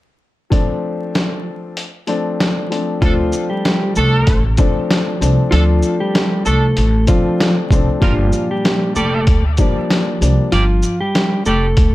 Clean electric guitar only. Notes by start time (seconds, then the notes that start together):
3.02 F3 F4
3.50 G3 G4
3.97 A3 A4
5.51 F3 F4
6.00 G3 G4
6.47 A3 A4
7.08 F3 F4
8.02 F3 F4
8.51 G3 G4
8.96 A3 A4
10.52 F3 F4
11.00 G3 G4
11.46 A3 A4